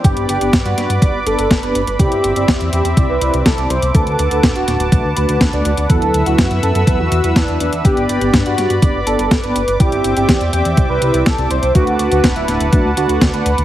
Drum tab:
HH |xxxxxxxxx-xxxxxx|xxxxxxxxx-xxxxxx|xxxxxxxxx-xxxxxx|xxxxxxxxx-xxxxxx|
SD |----o-o-----o---|----o-------o---|----o-o-----o---|----o-------o---|
BD |o---o---o---o---|o---o---o---o---|o---o---o---o---|o---o---o---o---|

HH |xxxxxxxxx-xxxxxx|xxxxxxxxx-xxxxxx|xxxxxxxxx-xxxxxx|
SD |----o-o-----o---|----o-------o---|----o-o-----o---|
BD |o---o---o---o---|o---o---o---o---|o---o---o---o---|